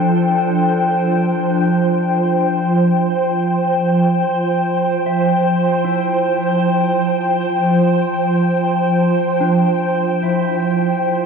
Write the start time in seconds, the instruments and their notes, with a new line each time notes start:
Already playing: ambient pad F3 D4 A4 C5 G5, clean electric guitar E4
5.06 clean electric guitar E5
5.85 clean electric guitar E4
9.40 clean electric guitar D4
10.23 clean electric guitar E4